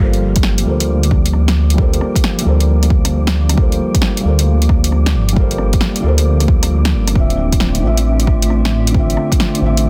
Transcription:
Already playing: G3 F4
0.00 G1 F3 G3 A#3 D4 A4 A#4 C5 D5
0.13 closed hi-hat
0.36 kick, closed hi-hat
0.43 snare
0.58 G3, closed hi-hat
0.64 D2 F4 A4 A#4
0.70 C5
0.80 closed hi-hat
1.03 closed hi-hat
1.11 kick, cross-stick
1.26 closed hi-hat
1.33 cross-stick
1.48 cross-stick, snare, closed hi-hat
1.70 G3, closed hi-hat
1.76 F4 A4, kick
1.80 A#4 C5
1.93 closed hi-hat
2.01 cross-stick
2.16 kick, closed hi-hat
2.24 snare
2.39 G3, closed hi-hat
2.43 D2 F4 A4 A#4
2.49 C5
2.60 closed hi-hat
2.83 cross-stick, closed hi-hat
2.90 kick
3.05 cross-stick, closed hi-hat
3.27 snare, closed hi-hat
3.49 G3, cross-stick, closed hi-hat
3.55 F4 A4 A#4, kick
3.61 C5
3.72 closed hi-hat
3.95 kick, closed hi-hat
4.02 snare
4.17 G3, closed hi-hat
4.23 D2 F4 A4 A#4
4.29 C5
4.39 closed hi-hat
4.62 closed hi-hat
4.69 kick, cross-stick
4.84 closed hi-hat
4.92 cross-stick
5.06 cross-stick, snare, closed hi-hat
5.14 G1
5.29 closed hi-hat
5.33 G3 F4, kick
5.37 A4 A#4
5.41 C5
5.51 closed hi-hat
5.58 cross-stick
5.73 kick, closed hi-hat
5.81 snare
5.96 closed hi-hat
6.01 D2 G3 F4 A4
6.06 A#4 C5
6.18 closed hi-hat
6.40 cross-stick, closed hi-hat
6.48 kick
6.63 cross-stick, closed hi-hat
6.85 snare, closed hi-hat
6.93 G1
7.07 cross-stick, closed hi-hat
7.12 D1 D3 A3 C4 F4 E5, kick
7.17 F4 E5
7.30 closed hi-hat
7.52 kick, closed hi-hat
7.60 snare
7.75 closed hi-hat
7.79 A1 D3 C4
7.85 F4 E5
7.97 closed hi-hat
8.20 closed hi-hat
8.27 kick, cross-stick
8.42 closed hi-hat
8.50 cross-stick
8.65 cross-stick, snare, closed hi-hat
8.87 D3, closed hi-hat
8.94 C4 F4, kick
8.99 E5
9.10 closed hi-hat
9.17 cross-stick
9.32 kick, closed hi-hat
9.40 snare
9.55 D3, closed hi-hat
9.61 A1 C4 F4
9.66 E5
9.77 closed hi-hat

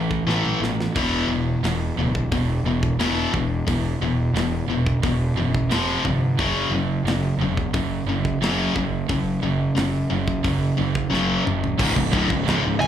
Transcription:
Already playing: A1 A2 E3
0.11 kick
0.27 A1 A2 E3 A3, snare
0.45 mid tom
0.61 A1 A2 E3, snare
0.80 snare
0.95 E1 E2 B2 E3, kick, open hi-hat, crash
1.27 E1 E2 B2
1.63 E1 E2 B2, snare, open hi-hat
1.96 D1 E2 B2
2.15 kick
2.31 E1 E2 B2, kick, open hi-hat
2.64 E1 E2 B2
2.83 kick
2.99 E1 E2 B2 E3, snare, open hi-hat
3.33 E1 E2 B2, kick
3.67 E1 E2 B2, kick, open hi-hat
4.01 E1 E2 B2
4.34 E1 E2 B2, snare, open hi-hat
4.68 E1 E2 B2
4.86 kick
5.03 E1 E2 B2, kick, open hi-hat
5.35 F#1 E2 B2
5.54 kick
5.69 F1 F2 C3 F3, snare, open hi-hat
6.05 G1 F2 C3, kick
6.39 F#1 F#2 C#3 F#3, kick, open hi-hat
6.70 F#1 F#2
6.74 C#3
7.04 F#1 F#2, open hi-hat
7.08 C#3, snare
7.38 E1 F#2 C#3
7.57 kick
7.74 F#1 F#2 C#3, kick, open hi-hat
8.06 F#1 F#2 C#3
8.25 kick
8.41 F#1 F#2 C#3 F#3, snare, open hi-hat
8.75 F#1 F#2 C#3, kick
9.09 F#1 F#2 C#3, kick, open hi-hat
9.43 F#1 F#2 C#3
9.75 F#1 F#2 C#3, snare, open hi-hat
10.10 F#1 F#2 C#3
10.28 kick
10.44 F#1 F#2 C#3, kick, open hi-hat
10.77 F#1 F#2 C#3
10.95 kick
11.10 F#1 F#2 C#3 F#3, snare
11.44 F#1 F#2 C#3, mid tom
11.64 floor tom
11.79 C#1 C#2 G#2, kick, crash
11.95 C#1 C#2 G#2, kick
12.13 D1 D2 A2, kick, ride
12.30 C#1 C#2 G#2, kick
12.44 C#2 G#2
12.48 C#1 C#2 G#2, snare, ride
12.61 C#1 C#2 G#2
12.65 C#2 G#2
12.80 C#1 C#2 G#2 G#5, ride

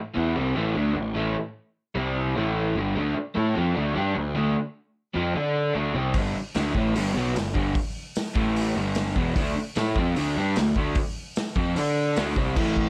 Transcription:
0.15 E2 E3 B3 E4
0.36 C2 C3 G3 C4
0.55 A1 A2 E3 A3
0.75 D2 D3 A3 D4
0.94 A1 A2 E3
1.14 A1 A2 E3 A3
1.95 C2 C3 G3 C4
2.36 A1 A2 E3 A3
2.76 G1 G2 D3 G3
2.95 D2 D3 A3 D4
3.16 muted picked electric bass stroke, muted overdriven electric guitar stroke
3.35 A2 A3 E4 A4
3.54 F2 F3 C4 F4
3.74 D2 D3 A3 D4
3.94 G2 G3 D4 G4
4.15 D2 D3 A3
4.35 D2 D3 A3 D4
5.14 F2 F3 C4 F4
5.35 D3 D4 A4 D5
5.74 D2 D3 A3 D4
5.94 C2 C3 G3 C4
6.14 G1 G2 D3 G3, kick, open hi-hat
6.35 muted overdriven electric guitar stroke, muted picked electric bass stroke
6.55 D2 D3 A3 D4, snare, open hi-hat
6.74 A1 A2 E3 A3, kick
6.94 G1 G2 D3 G3, open hi-hat
7.13 B1 B2 F#3 B3
7.34 G1 G2 D3, snare, open hi-hat
7.54 G1 G2 D3 G3, kick
7.75 kick, open hi-hat
8.15 snare, open hi-hat
8.35 A1 A2 E3 A3, kick
8.56 open hi-hat
8.76 G1 G2 D3 G3
8.95 snare, open hi-hat
9.16 E1 E2 B2 E3, kick
9.36 D2 D3 A3 D4, kick, open hi-hat
9.57 muted picked electric bass stroke, muted overdriven electric guitar stroke
9.76 A2 A3 E4 A4, snare, open hi-hat
9.96 F2 F3 C4 F4, kick
10.16 D2 D3 A3 D4, open hi-hat
10.37 G2 G3 D4 G4
10.56 D2 D3 A3, snare, open hi-hat
10.76 D2 D3 A3 D4, kick
10.95 kick, open hi-hat
11.36 snare, open hi-hat
11.56 F2 F3 C4 F4, kick
11.76 D3 D4 A4 D5, open hi-hat
12.16 D2 D3 A3 D4, snare, open hi-hat
12.36 C2 C3 G3 C4, kick
12.56 A1 A2 E3 A3, kick, crash
12.77 kick

